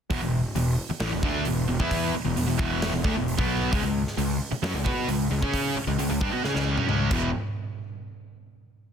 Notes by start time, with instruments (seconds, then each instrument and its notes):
0.10 picked electric bass E1, distorted electric guitar E2 B2, kick, open hi-hat
0.22 picked electric bass E1, distorted electric guitar E2 B2
0.55 picked electric bass E1, distorted electric guitar E2 B2, open hi-hat
0.90 muted picked electric bass stroke, muted distorted electric guitar stroke
1.00 picked electric bass A1, distorted electric guitar A2 E3, snare, open hi-hat
1.12 picked electric bass E1, distorted electric guitar E2 B2
1.23 picked electric bass D2, distorted electric guitar D3 A3 D4, kick
1.45 picked electric bass E1, distorted electric guitar E2 B2, open hi-hat
1.68 picked electric bass E1, distorted electric guitar E2 B2
1.80 picked electric bass E2, distorted electric guitar E3 B3 E4, kick
1.91 kick, open hi-hat
2.14 muted distorted electric guitar stroke, muted picked electric bass stroke
2.25 picked electric bass E1, distorted electric guitar E2 B2
2.36 picked electric bass E1, distorted electric guitar E2 B2, open hi-hat
2.47 picked electric bass E1, distorted electric guitar E2 B2
2.59 picked electric bass E1, distorted electric guitar E2 B2 E3, kick
2.82 snare, open hi-hat
2.92 picked electric bass E1, distorted electric guitar E2 B2
3.04 picked electric bass D2, distorted electric guitar D3 A3, kick
3.16 picked electric bass E1, distorted electric guitar E2 B2
3.28 open hi-hat
3.38 picked electric bass B1, distorted electric guitar B2 F#3 B3, kick
3.72 picked electric bass C#2, distorted electric guitar C#3 G#3, kick, open hi-hat
3.83 picked electric bass C#2, distorted electric guitar C#3 G#3
4.07 snare
4.17 picked electric bass C#2, distorted electric guitar C#3 G#3, open hi-hat
4.52 muted picked electric bass stroke, muted distorted electric guitar stroke
4.63 picked electric bass F#2, distorted electric guitar F#3 C#4, snare, open hi-hat
4.74 picked electric bass C#2, distorted electric guitar C#3 G#3
4.85 picked electric bass B2, distorted electric guitar B3 F#4 B4, kick
5.08 picked electric bass C#2, distorted electric guitar C#3 G#3, open hi-hat
5.31 picked electric bass C#2, distorted electric guitar C#3 G#3
5.42 picked electric bass C#3, distorted electric guitar C#4 G#4 C#5, kick
5.54 kick, open hi-hat
5.76 muted picked electric bass stroke, muted distorted electric guitar stroke
5.87 picked electric bass C#2, distorted electric guitar C#3 G#3
5.99 picked electric bass C#2, distorted electric guitar C#3 G#3, open hi-hat
6.10 picked electric bass C#2, distorted electric guitar C#3 G#3
6.21 picked electric bass G2, distorted electric guitar G3 D4, kick
6.32 picked electric bass B2, distorted electric guitar B3 F#4
6.43 picked electric bass C#3, distorted electric guitar C#4 G#4, snare
6.54 picked electric bass C#2, distorted electric guitar C#3 G#3 C#4, snare
6.76 picked electric bass F#2, distorted electric guitar F#3 C#4, high tom
6.87 picked electric bass C#2, distorted electric guitar C#3 G#3 C#4, mid tom
7.11 picked electric bass E1, distorted electric guitar E2 B2 E3, kick, crash